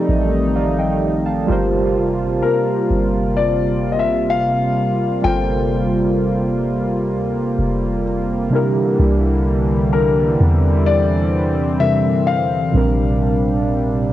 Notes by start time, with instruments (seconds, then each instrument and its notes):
Already playing: analog synth pad D#3 G3 A3 D#4, synth keys F3 C4 D#4 G4 A4 D5
0.09 808-style bass A1
0.56 synth keys D5 F5
0.79 synth keys D#5 G5
1.26 synth keys F5 A5
1.47 808-style bass G1, analog synth pad C3 G3 A#3 F4, synth keys G3 F4 G4
1.51 synth keys A#4 C5
1.96 808-style bass F1
2.20 808-style bass G1
2.43 grand piano A#4
2.90 808-style bass G1
3.36 grand piano D5
3.92 grand piano D#5
3.99 grand piano E5
4.30 grand piano F5
5.22 808-style bass G1, synth keys G3 F4 A4, grand piano G5
5.26 synth keys A#4 C5
7.12 808-style bass D2
7.35 808-style bass G1
7.59 808-style bass F1
8.50 synth keys C3 G3 D4 E4, analog synth pad D3 E3 G3
8.54 synth keys G4 A#4
8.99 808-style bass C2
9.93 grand piano A#4
10.40 808-style bass E2, analog synth pad C4
10.86 grand piano D5
11.79 synth keys C3 E3 G3 D4 A4 A#4, grand piano E5
12.04 808-style bass G2
12.27 grand piano F5
12.39 808-style bass E2
12.72 808-style bass A#1, synth keys A#2 G3 C4, analog synth pad C3 G3 D4
12.76 synth keys D4 A#4